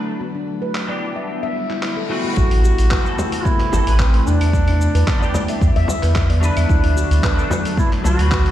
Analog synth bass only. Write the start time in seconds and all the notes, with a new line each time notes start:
2.37 A1
2.79 A1
3.73 G1
3.87 A1
4.27 E2
4.95 E2
5.62 E2
5.76 E2
6.03 E2
6.57 E2
6.69 D2
7.11 D2
8.05 C2
8.19 D2